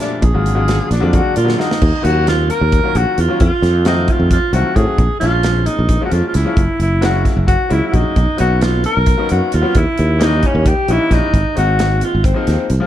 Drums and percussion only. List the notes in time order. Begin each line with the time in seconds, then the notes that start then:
0.00 snare, closed hi-hat
0.22 kick, closed hi-hat
0.46 closed hi-hat
0.68 snare, closed hi-hat
0.91 snare, closed hi-hat
1.13 kick, closed hi-hat
1.36 closed hi-hat
1.49 snare
1.60 snare
1.71 snare
1.82 kick, crash
2.05 closed hi-hat
2.27 snare, closed hi-hat
2.50 closed hi-hat
2.72 kick, closed hi-hat
2.95 closed hi-hat
3.18 closed hi-hat
3.40 kick, closed hi-hat
3.63 snare, closed hi-hat
3.85 snare, closed hi-hat
4.08 kick, closed hi-hat
4.31 kick, closed hi-hat
4.53 closed hi-hat
4.76 kick, closed hi-hat
4.98 kick, closed hi-hat
5.21 snare, closed hi-hat
5.43 snare, closed hi-hat
5.66 closed hi-hat
5.89 kick, closed hi-hat
6.12 closed hi-hat
6.34 snare, closed hi-hat
6.57 kick, closed hi-hat
6.80 closed hi-hat
7.02 snare, closed hi-hat
7.25 kick, snare, closed hi-hat
7.48 kick, closed hi-hat
7.71 closed hi-hat
7.94 kick, closed hi-hat
8.16 kick, closed hi-hat
8.38 closed hi-hat
8.61 snare, closed hi-hat
8.84 closed hi-hat
9.06 kick, closed hi-hat
9.29 closed hi-hat
9.52 closed hi-hat
9.75 kick, closed hi-hat
9.98 closed hi-hat
10.21 snare, closed hi-hat
10.43 kick, closed hi-hat
10.66 kick, closed hi-hat
10.88 closed hi-hat
11.11 kick, snare, closed hi-hat
11.34 kick, closed hi-hat
11.57 closed hi-hat
11.79 snare, closed hi-hat
12.01 closed hi-hat
12.24 kick, closed hi-hat
12.47 snare, closed hi-hat
12.70 closed hi-hat